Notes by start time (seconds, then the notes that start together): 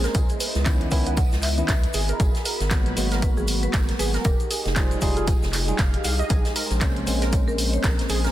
Already playing: G#3 A#3 C4 C#4 C5
0.04 A#4, snare, closed hi-hat, shaker
0.14 C#2 B3 E4 G#4 D#5, kick, closed hi-hat, tambourine, shaker
0.29 closed hi-hat, shaker
0.40 B4, open hi-hat, tambourine, shaker
0.55 C#2, snare, closed hi-hat, shaker
0.65 D#3 B3 C#4 E4 C#5, kick, snare, clap, closed hi-hat, tambourine, shaker
0.81 closed hi-hat
0.91 C#2 D#3 B3 C#4 E4, kick, open hi-hat, tambourine, shaker
1.06 B4 F#5, closed hi-hat, shaker
1.17 F#5, kick, closed hi-hat, tambourine, shaker
1.32 C#2, snare, shaker
1.42 E5, clap, open hi-hat, tambourine, shaker
1.58 D#3 B3 C#4 E4 E5, closed hi-hat, shaker
1.68 C#2 B4 E5, kick, snare, clap, closed hi-hat, tambourine, shaker
1.83 closed hi-hat
1.93 G#1 F#4 G#4 B5, open hi-hat, tambourine, shaker
2.08 A#4, closed hi-hat, shaker
2.20 G#1 G#4, kick, closed hi-hat, tambourine, shaker
2.35 snare, closed hi-hat, shaker
2.45 A#4, open hi-hat, tambourine, shaker
2.60 G#1, snare, closed hi-hat, shaker
2.71 A#2 F#3 G#3 B3 B4, kick, snare, clap, closed hi-hat, tambourine, shaker
2.86 closed hi-hat
2.96 G#1 F#3 G#3 A#3 B3, open hi-hat, tambourine, shaker
3.11 A#4, snare, closed hi-hat, shaker
3.22 B4, kick, closed hi-hat, tambourine, shaker
3.37 G#1 G#4, shaker
3.48 open hi-hat, tambourine, shaker
3.63 B4, closed hi-hat, shaker
3.73 G#1 A#4, kick, snare, clap, closed hi-hat, tambourine, shaker
3.89 snare, closed hi-hat
3.99 G#1 G#4 B4, open hi-hat, tambourine, shaker
4.14 A#4, snare, closed hi-hat, shaker
4.24 F1 D#4 G4 G#4 A#4, kick, closed hi-hat, tambourine, shaker
4.40 closed hi-hat, shaker
4.51 G#4, open hi-hat, tambourine, shaker
4.65 F1, snare, closed hi-hat, shaker
4.76 G3 D#4 F4 G#4 C5, kick, snare, clap, closed hi-hat, tambourine, shaker
4.91 closed hi-hat, shaker
5.01 F1 G3 D#4 F4 G#4, kick, open hi-hat, tambourine, shaker
5.17 F4 G#4, closed hi-hat, shaker
5.27 kick, closed hi-hat, tambourine, shaker
5.42 F1, snare, shaker
5.53 clap, open hi-hat, tambourine, shaker
5.68 G3 D#4 F4 G#4, closed hi-hat, shaker
5.78 F1 F5, kick, snare, clap, closed hi-hat, tambourine, shaker
5.94 closed hi-hat
6.04 C2 F5, open hi-hat, tambourine, shaker
6.19 D#5, closed hi-hat, shaker
6.30 A#1 G#3 G#4 C5, kick, closed hi-hat, tambourine, shaker
6.45 snare, closed hi-hat, shaker
6.56 A#4, open hi-hat, tambourine, shaker
6.70 A#1, snare, closed hi-hat, shaker
6.81 C3 G#3 A#3 C#4 C5, kick, snare, clap, closed hi-hat, tambourine, shaker
6.96 closed hi-hat
7.06 A#1 G#3 A#3 C4 C#4, open hi-hat, tambourine, shaker
7.21 A#4, snare, closed hi-hat, shaker
7.32 C#5, kick, closed hi-hat, tambourine, shaker
7.48 A#1 A#4, shaker
7.58 open hi-hat, tambourine, shaker
7.73 C#5, closed hi-hat, shaker
7.83 A#1 A#4, kick, snare, clap, closed hi-hat, tambourine, shaker
7.99 snare, closed hi-hat
8.09 A#1 G#4, open hi-hat, tambourine, shaker
8.24 A#4, snare, shaker